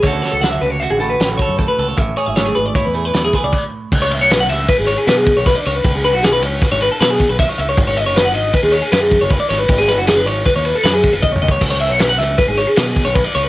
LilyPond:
<<
  \new Staff \with { instrumentName = "Clean electric guitar" } { \time 5/4 \key cis \phrygian \tempo 4 = 156 cis''16 a'16 cis''16 a'16 fis''16 e''16 b'16 cis''16 e''16 gis'16 a'16 b'8 a'16 cis''8 a'16 b'8 cis''16 | e''8 cis''16 e''16 cis''16 gis'16 b'16 d''16 cis''16 b'16 gis'16 b'8 gis'16 b'16 d''8 r8. | r16 cis''16 e''16 cis''16 b'16 fis''16 e''8 b'16 gis'16 cis''16 gis'16 b'16 gis'8 cis''16 b'16 d''16 cis''16 b'16~ | b'16 gis'16 b'16 fis'16 gis'16 b'16 cis''8 b'16 cis''16 b'16 a'16 b'16 gis'8 b'16 e''16 cis''16 e''16 cis''16 |
r16 cis''16 dis''16 cis''16 b'16 fis''16 dis''8 b'16 gis'16 cis''16 gis'16 b'16 gis'8 cis''16 b'16 d''16 cis''16 b'16~ | b'16 gis'16 b'16 fis'16 gis'16 b'16 cis''8 b'16 cis''16 b'16 a'16 b'16 gis'8 b'16 dis''16 cis''16 dis''16 cis''16 | r16 cis''16 e''16 cis''16 b'16 fis''16 e''8 b'16 gis'16 cis''16 gis'16 b'16 gis'8 cis''16 b'16 d''16 cis''16 b'16 | }
  \new Staff \with { instrumentName = "Clean electric guitar" } { \time 5/4 \key cis \phrygian << { <d cis' fis' a'>8 a'4. fis'4. a'4 a'8 | r8 gis'4. e'4. gis'8 r4 | r1 r4 | r1 r4 |
r1 r4 | r1 r4 | r1 r4 | } \\ { d,4 d4. a,4. d,4 | a,4 a4. a,2~ a,8~ | a,1 r4 | r1 r4 |
r1 r4 | r1 r4 | r1 r4 | } >> }
  \new Staff \with { instrumentName = "Fingered electric bass" } { \clef bass \time 5/4 \key cis \phrygian d,8 r16 cis,8. cis,8. a,,8. a,,8 r16 fis,8 r16 cis,8 | a,,8 r16 gis,,8. gis,,8. e,8. e,8 r16 cis,16 r4 | cis,8. b,,8. cis,8 r16 gis,,8 r16 b,8. b,,8 r16 cis,8 | cis,8. b,,8. cis,8 r16 gis,,8 r16 b,8. b,,8 r16 cis,8 |
gis,,8. fis,,8. gis,,8 r16 dis,8 r16 fis,8. fis,,8 r16 gis,,8 | gis,,8. fis,,8. gis,,8 r16 dis,8 r16 fis,8. fis,,16 b,,8 cis,8 | cis,8. b,,8. cis,8 r16 gis,,8 r16 b,8. b,,8 r16 cis,8 | }
  \new DrumStaff \with { instrumentName = "Drums" } \drummode { \time 5/4 <hh bd>8 <hh sn>8 <hh sn>8 hh8 hh8 hh8 <hh sn>8 <hh bd>8 <hh bd>8 hh8 | <hh bd>8 hh8 <hh sn>8 hh8 <hh bd>8 hh8 <hh sn>8 <hh bd>8 <cymc bd>4 | <cymc bd>8 cymr8 <cymr sn>8 <cymr sn>8 <bd cymr>8 cymr8 <cymr sn>8 <bd cymr>8 <bd cymr sn>8 cymr8 | <bd cymr>8 cymr8 <cymr sn>8 cymr8 <bd cymr sn>8 cymr8 <cymr sn>8 <bd cymr>8 <bd cymr sn>8 cymr8 |
<bd cymr>8 cymr8 <cymr sn>8 cymr8 <bd cymr>8 cymr8 <cymr sn>8 <bd cymr>8 <bd cymr>8 <cymr sn>8 | <bd cymr>8 <cymr sn>8 <cymr sn>8 cymr8 <bd cymr sn>8 cymr8 <cymr sn>8 <bd cymr>8 \tuplet 3/2 { bd8 toml8 bd8 } | <cymc bd>8 cymr8 <cymr sn>8 <cymr sn>8 <bd cymr sn>8 cymr8 <cymr sn>8 <bd cymr>8 <bd cymr>8 cymr8 | }
>>